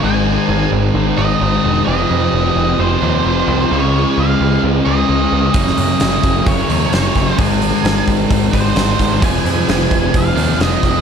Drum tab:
HH |----------------|----------------|----------------|o-o-o-o-o-o-o-o-|
SD |----------------|----------------|----------------|-o--o-------o-o-|
BD |----------------|----------------|----------------|o-----o-o-----o-|

HH |o-o-o-o-o-o-o-o-|o-o-o-o-o-o-o-o-|
SD |----o-------o-o-|----o-------o-o-|
BD |o-----o-o-o---o-|o-----o-o-----o-|